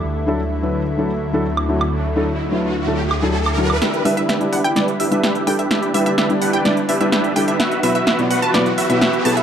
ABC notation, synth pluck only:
X:1
M:4/4
L:1/16
Q:1/4=127
K:Em
V:1 name="Synth pluck"
z16 | z16 | e2 e e e z f g d z e e e2 g e | e2 e e e z f g d z e e e2 g e |
e2 e e e z f a d z e e e2 a e |]